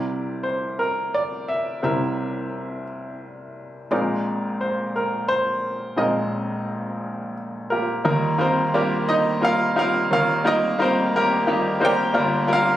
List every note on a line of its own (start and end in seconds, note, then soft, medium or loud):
0.00 1.80 C2 soft
0.00 1.80 C3 soft
0.00 1.79 G3 soft
0.00 1.79 C4 soft
0.00 1.80 E4 soft
0.00 0.78 A#4 soft
0.00 0.45 D5 medium
0.43 0.76 C5 medium
0.79 1.15 A#4 medium
1.14 1.50 D5 medium
1.48 1.82 E5 medium
1.83 3.87 C2 soft
1.83 3.87 C3 soft
1.83 3.87 G3 soft
1.83 3.87 C4 soft
1.83 3.87 E4 soft
1.83 3.88 A#4 soft
1.83 2.84 E5 medium
3.91 5.95 A#1 soft
3.91 5.95 A#2 soft
3.91 5.94 G#3 soft
3.91 5.94 C4 soft
3.91 5.95 D#4 soft
3.91 4.94 A#4 soft
3.91 4.56 D5 medium
4.61 4.93 C5 medium
4.96 5.31 A#4 medium
5.28 6.00 C5 medium
5.96 8.01 A#1 soft
5.96 8.01 A#2 soft
5.96 8.01 G#3 soft
5.96 8.01 C4 soft
5.96 8.01 D#4 soft
5.96 7.69 A#4 soft
5.96 7.32 D#5 medium
7.70 8.03 A#3 soft
7.70 8.04 F4 soft
7.70 8.36 G4 soft
7.70 8.04 A#4 medium
8.04 10.07 D#2 medium
8.04 12.11 D#3 medium
8.04 10.07 D#3 medium
8.04 12.77 G3 medium
8.04 8.33 G3 medium
8.04 12.77 A#3 medium
8.04 8.33 A#3 medium
8.04 8.33 D#4 medium
8.04 10.09 F4 medium
8.04 8.33 F4 medium
8.04 8.33 A#4 medium
8.38 8.62 G3 medium
8.38 8.62 A#3 medium
8.38 8.73 C4 medium
8.38 8.62 D#4 medium
8.38 8.62 F4 medium
8.38 8.62 A#4 medium
8.38 8.76 C5 medium
8.74 9.19 G3 medium
8.74 9.19 A#3 medium
8.74 9.07 D4 medium
8.74 9.19 F4 medium
8.74 9.19 G4 medium
8.74 9.19 A#4 medium
8.74 9.06 D5 medium
9.09 9.40 D#4 medium
9.09 9.40 D#5 medium
9.41 9.64 G3 medium
9.41 9.65 A#3 medium
9.41 9.65 D#4 medium
9.41 9.45 F4 medium
9.41 9.65 A#4 medium
9.41 9.77 F5 loud
9.46 9.75 F4 medium
9.76 10.21 G3 medium
9.76 10.21 A#3 medium
9.76 10.21 D#4 medium
9.76 9.80 F4 medium
9.76 10.12 A#4 medium
9.76 10.10 F5 medium
9.81 10.11 F4 medium
10.11 12.11 D#2 medium
10.11 12.11 D#3 medium
10.11 10.44 F4 medium
10.11 12.14 G4 medium
10.11 10.44 A#4 medium
10.11 10.44 F5 loud
10.44 10.67 G3 medium
10.44 10.67 A#3 medium
10.44 10.47 D#4 medium
10.44 10.78 D#4 medium
10.44 10.68 F4 medium
10.44 10.68 A#4 medium
10.44 10.81 D#5 medium
10.79 11.23 G3 medium
10.79 11.15 A#3 medium
10.79 11.24 D#4 medium
10.79 11.24 F4 medium
10.79 11.14 A#4 medium
10.79 11.16 C5 medium
10.83 11.13 C4 medium
11.16 11.46 A#3 medium
11.16 11.47 G4 medium
11.16 11.84 A#4 medium
11.47 11.69 G3 medium
11.47 11.69 A#3 medium
11.47 11.69 D#4 medium
11.47 11.70 F4 medium
11.47 11.70 G4 medium
11.80 12.12 G3 medium
11.80 12.13 A#3 medium
11.80 12.15 D#4 medium
11.80 12.13 F4 medium
11.80 12.15 C5 medium
11.85 12.47 G4 medium
11.85 12.13 A#4 medium
11.85 12.48 D5 medium
11.85 12.47 G5 loud
12.14 12.77 G1 medium
12.14 12.77 G2 medium
12.14 12.77 D3 medium
12.14 12.42 G3 medium
12.14 12.42 A#3 medium
12.14 12.42 D4 medium
12.14 12.42 F4 medium
12.14 12.77 F4 medium
12.14 12.42 A#4 medium
12.47 12.70 G3 medium
12.47 12.71 A#3 medium
12.47 12.71 D4 medium
12.47 12.51 F4 medium
12.47 12.71 A#4 medium
12.53 12.77 F4 medium
12.53 12.77 F5 loud